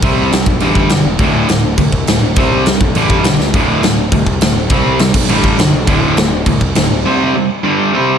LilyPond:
<<
  \new Staff \with { instrumentName = "Distorted electric guitar" } { \clef bass \time 4/4 \key g \major \tempo 4 = 205 <c g c'>4 <c g>8 r8 <g, d g>4 <g, d>8 r8 | <d, a, d>4 <d, a,>8 r8 <d, a,>8 r8 <d, a,>8 r8 | <c g c'>4 <c g>8 r8 <g, d g>4 <g, d>8 r8 | <d, a, d>4 <d, a,>8 r8 <d, a,>8 r8 <d, a,>8 r8 |
<c g c'>4 <c g>8 r8 <g, d g>4 <g, d>8 r8 | <d, a, d>4 <d, a,>8 r8 <d, a,>8 r8 <d, a,>8 r8 | <c g c'>4 <c g>8 r8 <g, d g>4 <c g c'>4 | }
  \new Staff \with { instrumentName = "Distorted electric guitar" } { \clef bass \time 4/4 \key g \major <c g c'>4 <c g>8 r8 <g, d g>4 <g, d>8 r8 | <d, a, d>4 <d, a,>8 r8 <d, a,>8 r8 <d, a,>8 r8 | <c g c'>4 <c g>8 r8 <g, d g>4 <g, d>8 r8 | <d, a, d>4 <d, a,>8 r8 <d, a,>8 r8 <d, a,>8 r8 |
<c g c'>4 <c g>8 r8 <g, d g>4 <g, d>8 r8 | <d, a, d>4 <d, a,>8 r8 <d, a,>8 r8 <d, a,>8 r8 | <c g c'>4 <c g>8 r8 <g, d g>4 <c g c'>4 | }
  \new Staff \with { instrumentName = "Picked electric bass" } { \clef bass \time 4/4 \key g \major c,8 c,8 c,8 b,,8 a,,4 b,,8 e,,8 | d,,8 d,,8 d,,4 c,4 d,,8 d,,8 | c,8 c,8 c,8 b,,8 a,,4 b,,8 cis,8 | d,,8 d,,8 d,,4 c,4 d,,8 d,,8 |
c,8 c,8 c,8 b,,8 a,,4 b,,8 b,,8 | d,,8 d,,8 d,,4 c,4 d,,8 d,,8 | r1 | }
  \new DrumStaff \with { instrumentName = "Drums" } \drummode { \time 4/4 <cymc bd>4 <cymc sn>8 bd8 cymc8 bd8 <cymc sn>4 | <cymc bd>4 <cymc sn>4 <cymc bd>8 bd8 <cymc sn>4 | <cymc bd>4 <cymc sn>8 bd8 cymc8 bd8 <cymc sn>8 sn8 | <cymc bd>4 <cymc sn>4 <cymc bd>8 bd8 <cymc sn>4 |
<cymc bd>4 <cymc sn>8 <cymc bd>8 cymc8 bd8 <cymc sn>4 | <cymc bd>4 <cymc sn>4 <cymc bd>8 bd8 <cymc sn>4 | r4 r4 r4 r4 | }
>>